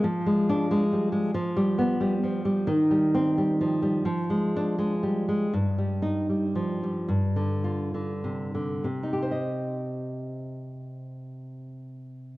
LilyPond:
\new Staff \with { instrumentName = "Nylon-string guitar" } { \clef bass \time 4/4 \key c \minor \tempo 4 = 80 << { \tuplet 3/2 { r4 d'8 } r4 \tuplet 3/2 { r4 b8 } r4 | \tuplet 3/2 { r4 c'8 } r4 \tuplet 3/2 { r4 d'8 } r4 | \tuplet 3/2 { r4 ees'8 } r4 \tuplet 3/2 { r4 f'8 } r4 | <c ees' g' c'' ees''>1 | } \\ { \tuplet 3/2 { f8 aes4 aes8 g8 aes8 f8 g4 g8 f8 g8 } | \tuplet 3/2 { ees8 g4 g8 f8 g8 f8 aes4 aes8 g8 aes8 } | \tuplet 3/2 { g,8 g4 g8 f8 g8 g,8 d4 d8 c8 d8 } | r1 | } >> }